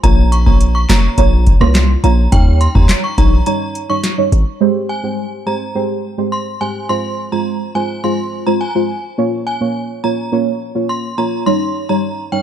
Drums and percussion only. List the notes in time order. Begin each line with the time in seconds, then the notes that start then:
0.04 kick, closed hi-hat
0.32 closed hi-hat
0.46 kick
0.61 closed hi-hat
0.89 kick, snare, clap, closed hi-hat
1.18 kick, closed hi-hat
1.47 kick, closed hi-hat
1.61 cross-stick
1.75 snare, clap, closed hi-hat
2.04 closed hi-hat
2.32 kick, closed hi-hat
2.61 closed hi-hat
2.75 kick
2.89 snare, clap, closed hi-hat
3.18 kick, closed hi-hat
3.46 closed hi-hat
3.75 closed hi-hat
4.04 snare, closed hi-hat
4.32 closed hi-hat